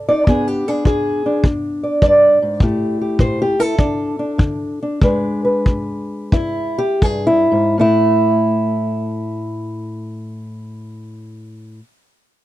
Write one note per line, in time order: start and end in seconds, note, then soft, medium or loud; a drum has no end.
0.00 0.24 F3 medium
0.00 0.26 A4 soft
0.08 0.26 D#4 soft
0.08 0.28 D5 loud
0.27 0.82 E2 medium
0.27 2.59 B3 medium
0.27 0.67 D4 medium
0.27 0.48 G#4 loud
0.27 kick medium
0.48 0.68 G4 medium
0.68 1.25 D4 medium
0.68 0.85 G#4 medium
0.85 1.40 E2 medium
0.85 1.44 G#4 loud
0.85 kick medium
1.26 2.59 D4 soft
1.44 1.99 E2 medium
1.44 kick medium
1.83 2.01 D5 soft
2.02 2.42 G2 medium
2.02 3.19 D5 loud
2.02 kick medium
2.42 2.61 G#2 medium
2.60 3.16 A2 medium
2.60 3.77 A3 medium
2.60 3.59 E4 medium
2.60 3.00 G4 medium
2.60 kick medium
3.01 3.40 G4 soft
3.19 3.75 A2 medium
3.19 3.40 C5 medium
3.19 kick medium
3.42 3.60 G4 medium
3.59 3.78 E4 soft
3.59 4.81 A4 loud
3.78 4.35 D3 medium
3.78 4.18 D4 medium
3.78 kick medium
4.19 4.81 D4 soft
4.38 4.97 D3 medium
4.38 kick medium
4.83 5.00 D4 soft
5.01 5.61 E2 medium
5.01 7.73 G#3 medium
5.01 7.73 D4 medium
5.01 5.43 B4 soft
5.01 kick medium
5.45 6.32 B4 soft
5.66 6.28 E2 medium
5.66 kick medium
6.32 6.98 E2 medium
6.32 6.79 E4 loud
6.32 kick medium
6.78 7.03 G4 loud
7.02 7.51 G2 medium
7.02 7.26 G#4 medium
7.02 kick medium
7.27 7.76 E4 loud
7.52 7.76 G#2 medium
7.78 11.79 A2 medium
7.78 11.81 A3 medium
7.78 11.78 E4 loud